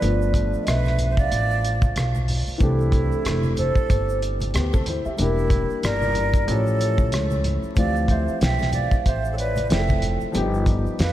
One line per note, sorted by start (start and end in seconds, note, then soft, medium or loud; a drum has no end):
0.00 0.51 G1 loud
0.00 2.55 F3 medium
0.00 2.56 A3 medium
0.00 2.57 B3 medium
0.00 0.57 B4 medium
0.00 0.64 D5 medium
0.00 closed hi-hat medium
0.00 shaker medium
0.04 2.57 D4 medium
0.04 2.58 F4 medium
0.22 shaker soft
0.34 kick medium
0.34 closed hi-hat medium
0.34 low conga medium
0.34 shaker soft
0.53 muted upright bass stroke soft
0.53 shaker soft
0.61 0.66 B4 medium
0.61 0.68 D#5 medium
0.67 1.28 B1 medium
0.67 1.07 B4 medium
0.67 1.07 E5 medium
0.67 cross-stick loud
0.67 closed hi-hat medium
0.67 shaker medium
0.85 cross-stick soft
0.85 high conga medium
0.85 shaker soft
0.98 closed hi-hat medium
0.98 low conga medium
0.98 shaker soft
1.10 1.17 C5 medium
1.10 1.19 E5 medium
1.17 2.11 D5 medium
1.17 2.12 F5 medium
1.17 kick medium
1.17 shaker soft
1.32 1.93 A1 medium
1.32 closed hi-hat medium
1.32 shaker medium
1.51 shaker soft
1.64 closed hi-hat medium
1.64 shaker soft
1.82 kick loud
1.82 high conga medium
1.82 shaker soft
1.96 2.45 B1 medium
1.96 cross-stick loud
1.96 closed hi-hat medium
1.96 high conga soft
1.96 shaker medium
2.15 high conga medium
2.15 shaker soft
2.28 open hi-hat medium
2.28 low conga medium
2.28 shaker soft
2.47 muted upright bass stroke soft
2.47 shaker soft
2.58 3.09 C2 medium
2.58 5.13 E3 medium
2.58 5.14 A3 medium
2.58 4.50 C4 medium
2.58 4.51 D4 medium
2.58 3.53 E4 medium
2.58 3.61 A4 medium
2.58 kick loud
2.58 closed hi-hat medium
2.58 shaker medium
2.63 4.52 G4 medium
2.80 shaker soft
2.92 kick medium
2.92 closed hi-hat medium
2.92 low conga medium
2.92 shaker soft
3.12 muted upright bass stroke soft
3.12 shaker soft
3.25 3.74 F1 medium
3.25 cross-stick loud
3.25 closed hi-hat medium
3.25 shaker medium
3.43 high conga medium
3.43 shaker soft
3.57 4.18 A4 medium
3.57 4.19 C5 loud
3.57 closed hi-hat medium
3.57 high conga soft
3.57 low conga medium
3.57 shaker soft
3.75 kick medium
3.75 shaker soft
3.90 4.51 G1 medium
3.90 kick loud
3.90 closed hi-hat medium
3.90 shaker medium
4.09 shaker medium
4.22 closed hi-hat medium
4.22 shaker soft
4.40 closed hi-hat medium
4.40 high conga medium
4.40 shaker soft
4.54 5.03 D2 medium
4.54 4.72 B3 medium
4.54 4.72 G4 medium
4.54 cross-stick loud
4.54 closed hi-hat medium
4.54 high conga soft
4.54 shaker medium
4.73 4.86 C4 medium
4.73 4.86 A4 medium
4.73 kick medium
4.73 high conga medium
4.73 shaker soft
4.86 5.05 E4 medium
4.86 5.04 C5 medium
4.86 closed hi-hat medium
4.86 low conga medium
4.86 shaker soft
5.05 5.20 G4 medium
5.05 5.36 E5 medium
5.05 muted upright bass stroke soft
5.05 shaker soft
5.16 5.67 E1 medium
5.16 6.44 G3 medium
5.16 6.45 A#3 medium
5.16 6.45 D4 medium
5.16 5.79 E4 medium
5.16 5.86 A#4 medium
5.16 closed hi-hat medium
5.16 shaker medium
5.20 6.46 E4 medium
5.20 6.47 G4 medium
5.38 shaker soft
5.50 kick medium
5.50 closed hi-hat medium
5.50 low conga medium
5.50 shaker soft
5.70 muted upright bass stroke soft
5.70 shaker soft
5.83 6.44 G1 medium
5.83 6.44 A#4 loud
5.83 6.45 D5 medium
5.83 cross-stick loud
5.83 closed hi-hat medium
5.83 shaker medium
6.02 high conga medium
6.02 shaker soft
6.14 closed hi-hat medium
6.14 low conga medium
6.14 shaker soft
6.34 kick medium
6.34 closed hi-hat medium
6.34 shaker soft
6.45 7.12 A1 loud
6.45 7.73 F3 medium
6.45 7.74 A3 medium
6.45 7.74 C#4 medium
6.45 7.41 A4 medium
6.45 closed hi-hat medium
6.45 shaker medium
6.49 7.75 E4 medium
6.49 7.76 G4 medium
6.49 7.41 C#5 medium
6.67 shaker soft
6.80 closed hi-hat medium
6.80 shaker soft
6.98 kick medium
6.98 high conga medium
6.98 shaker soft
7.12 7.61 C#2 medium
7.12 cross-stick loud
7.12 closed hi-hat medium
7.12 high conga soft
7.12 shaker medium
7.31 high conga medium
7.31 shaker medium
7.44 closed hi-hat medium
7.44 low conga medium
7.44 shaker soft
7.63 muted upright bass stroke soft
7.63 shaker soft
7.74 8.25 D2 loud
7.74 9.67 E3 medium
7.74 9.65 F3 medium
7.74 9.66 A3 medium
7.74 9.67 C4 medium
7.74 8.07 D5 medium
7.74 kick loud
7.74 closed hi-hat medium
7.74 shaker medium
7.78 9.68 G4 medium
7.78 8.11 F5 loud
7.96 shaker soft
8.08 8.39 C5 medium
8.08 8.43 E5 medium
8.08 kick medium
8.08 closed hi-hat medium
8.08 low conga medium
8.08 shaker soft
8.28 muted upright bass stroke soft
8.28 shaker soft
8.41 8.90 B1 medium
8.41 8.71 E5 medium
8.41 8.75 G5 medium
8.41 snare loud
8.41 closed hi-hat medium
8.41 shaker medium
8.59 snare soft
8.59 high conga medium
8.59 shaker soft
8.72 9.03 D5 medium
8.72 9.08 F5 medium
8.72 closed hi-hat medium
8.72 high conga soft
8.72 low conga medium
8.72 shaker soft
8.91 muted upright bass stroke soft
8.91 kick medium
8.91 shaker soft
9.06 9.67 A1 medium
9.06 9.30 C5 medium
9.06 9.34 E5 medium
9.06 kick medium
9.06 closed hi-hat medium
9.06 shaker medium
9.25 shaker medium
9.32 9.38 A4 medium
9.32 9.39 C#5 medium
9.38 9.68 B4 medium
9.38 9.72 D5 medium
9.38 closed hi-hat medium
9.38 shaker soft
9.56 closed hi-hat soft
9.56 high conga medium
9.56 shaker soft
9.69 10.19 F1 medium
9.69 10.30 F3 soft
9.69 10.35 A3 soft
9.69 10.35 C4 soft
9.69 10.35 E4 soft
9.69 9.79 G#4 soft
9.69 10.18 E5 medium
9.69 10.19 G5 medium
9.69 snare loud
9.69 closed hi-hat medium
9.69 high conga soft
9.69 shaker medium
9.78 10.39 A4 medium
9.88 kick medium
9.88 high conga medium
9.88 shaker soft
10.02 closed hi-hat medium
10.02 low conga medium
10.02 shaker soft
10.21 muted upright bass stroke soft
10.21 shaker soft
10.32 10.83 G1 loud
10.32 11.12 F3 medium
10.32 11.12 G3 medium
10.32 11.12 B3 medium
10.32 11.12 D#4 medium
10.32 closed hi-hat medium
10.32 shaker medium
10.37 11.12 G4 medium
10.54 shaker soft
10.66 kick medium
10.66 closed hi-hat medium
10.66 low conga medium
10.66 shaker soft
10.86 muted upright bass stroke soft
10.86 shaker soft
10.99 11.12 F2 medium
10.99 11.12 B4 medium
10.99 11.12 F5 medium
10.99 snare loud
10.99 closed hi-hat medium
10.99 shaker medium